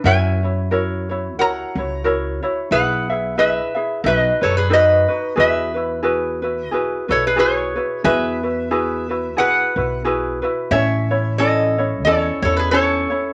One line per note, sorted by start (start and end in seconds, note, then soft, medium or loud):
0.04 1.37 F#2 medium
0.04 0.43 E4 medium
0.04 0.43 F#4 medium
0.04 0.42 A#4 medium
0.04 0.42 C#5 medium
0.04 1.34 E5 medium
0.04 1.41 G#5 loud
0.43 0.71 E4 soft
0.43 0.70 F#4 soft
0.43 0.71 C#5 soft
0.71 1.10 E4 medium
0.71 1.09 F#4 medium
0.71 1.09 A#4 medium
0.71 1.08 C#5 medium
1.09 1.39 E4 soft
1.09 1.38 F#4 soft
1.09 1.38 C#5 medium
1.37 1.62 C#2 medium
1.37 1.77 E4 medium
1.37 1.77 F#4 medium
1.37 1.76 A#4 medium
1.37 1.77 C#5 medium
1.37 2.01 F#5 medium
1.41 2.02 A#5 medium
1.75 2.37 C#2 medium
1.75 2.04 E4 soft
1.75 2.04 F#4 soft
1.75 2.04 C#5 medium
2.04 2.42 E4 medium
2.04 2.43 F#4 medium
2.04 2.42 A#4 medium
2.04 2.41 C#5 medium
2.43 2.70 E4 medium
2.43 2.71 F#4 medium
2.43 2.71 C#5 medium
2.71 3.58 B1 medium
2.71 3.10 E4 medium
2.71 3.10 G#4 medium
2.71 3.09 B4 medium
2.71 3.35 B4 medium
2.71 3.08 E5 medium
2.71 3.38 F#5 loud
3.10 3.37 E4 soft
3.10 3.37 G#4 medium
3.10 3.37 E5 medium
3.38 3.75 E4 medium
3.38 3.75 G#4 medium
3.38 3.76 B4 medium
3.38 4.02 B4 medium
3.38 3.73 E5 medium
3.38 4.06 E5 medium
3.75 4.05 E4 soft
3.75 4.05 G#4 soft
3.75 4.03 E5 medium
4.04 4.29 B1 loud
4.04 4.42 D#4 medium
4.04 4.41 F#4 medium
4.04 4.41 A4 medium
4.04 4.40 B4 medium
4.04 4.42 B4 medium
4.04 4.41 D#5 medium
4.41 5.04 F#2 medium
4.41 4.69 D#4 soft
4.41 4.70 F#4 soft
4.41 4.56 A4 medium
4.41 4.69 B4 medium
4.41 4.57 C#5 medium
4.57 4.71 G#4 medium
4.57 4.72 B4 medium
4.70 5.09 D#4 medium
4.70 5.08 F#4 medium
4.70 5.08 A4 medium
4.70 5.07 B4 medium
4.70 5.35 B4 medium
4.70 5.40 D#5 loud
5.08 5.37 D#4 soft
5.08 5.36 F#4 medium
5.08 5.36 B4 soft
5.36 6.71 E2 medium
5.36 5.75 E4 medium
5.36 5.75 F#4 medium
5.36 5.74 G#4 medium
5.36 5.73 B4 medium
5.36 7.26 B4 medium
5.40 6.64 E5 medium
5.74 6.02 E4 soft
5.74 6.02 F#4 medium
5.74 6.02 B4 medium
6.03 6.42 E4 medium
6.03 6.42 F#4 medium
6.03 6.42 G#4 medium
6.03 6.41 B4 medium
6.42 6.71 E4 soft
6.42 6.72 F#4 soft
6.42 6.71 B4 medium
6.64 7.35 D#5 medium
6.71 6.96 B1 medium
6.71 7.09 E4 medium
6.71 7.08 F#4 medium
6.71 7.08 G#4 medium
6.71 7.07 B4 medium
7.08 7.71 B1 medium
7.08 7.36 E4 soft
7.08 7.36 F#4 medium
7.08 7.23 A4 medium
7.08 7.35 B4 medium
7.08 7.25 C#5 medium
7.27 7.38 G#4 medium
7.27 7.39 B4 medium
7.36 7.76 E4 medium
7.36 7.76 F#4 medium
7.36 7.75 G#4 medium
7.36 8.01 G#4 medium
7.36 7.74 B4 medium
7.36 8.04 C#5 medium
7.76 8.04 E4 soft
7.76 8.04 F#4 medium
7.76 8.04 B4 medium
8.04 9.38 E2 loud
8.04 8.43 E4 medium
8.04 8.42 F#4 medium
8.04 8.42 G#4 medium
8.04 9.34 B4 medium
8.04 8.42 B4 medium
8.04 9.42 E5 loud
8.43 8.70 E4 soft
8.43 8.70 F#4 soft
8.43 8.70 B4 medium
8.71 9.09 E4 medium
8.71 9.09 F#4 medium
8.71 9.09 G#4 medium
8.71 9.08 B4 medium
9.09 9.36 E4 soft
9.09 9.37 F#4 soft
9.09 9.36 B4 medium
9.37 9.63 B1 medium
9.37 9.76 E4 medium
9.37 9.76 F#4 medium
9.37 9.75 G#4 medium
9.37 9.75 B4 medium
9.37 10.01 B4 medium
9.37 10.01 F#5 medium
9.76 10.38 B1 medium
9.76 10.04 E4 soft
9.76 10.04 F#4 soft
9.76 10.04 B4 soft
10.04 10.43 E4 medium
10.04 10.42 F#4 medium
10.04 10.42 G#4 medium
10.04 10.41 B4 medium
10.42 10.72 E4 medium
10.42 10.71 F#4 medium
10.42 10.71 B4 medium
10.71 12.04 A1 medium
10.71 11.10 C#4 medium
10.71 11.10 E4 medium
10.71 11.10 A4 medium
10.71 11.34 C#5 medium
10.71 11.10 C#5 medium
10.71 11.38 E5 medium
11.11 11.39 C#4 soft
11.11 11.39 E4 medium
11.11 11.39 C#5 medium
11.38 11.77 C#4 medium
11.38 11.77 E4 medium
11.38 11.76 A4 medium
11.38 12.01 A4 medium
11.38 11.77 C#5 medium
11.38 12.07 D#5 medium
11.78 12.06 C#4 soft
11.78 12.06 E4 soft
11.78 12.06 C#5 medium
12.04 12.29 E2 loud
12.04 12.44 C#4 medium
12.04 12.44 A4 medium
12.04 12.41 A4 medium
12.04 12.41 C#5 medium
12.08 12.45 E4 medium
12.08 12.44 C#5 medium
12.42 13.04 E2 medium
12.42 12.72 E4 soft
12.42 12.57 A4 medium
12.42 12.56 C#5 medium
12.42 12.72 C#5 medium
12.46 12.71 C#4 soft
12.57 12.71 G#4 medium
12.57 12.71 B4 medium
12.71 13.10 C#4 medium
12.71 13.10 E4 medium
12.71 13.10 A4 medium
12.71 13.33 A4 medium
12.71 13.33 C#5 medium
12.71 13.09 C#5 medium
13.10 13.33 C#4 soft
13.10 13.33 E4 soft
13.10 13.33 C#5 medium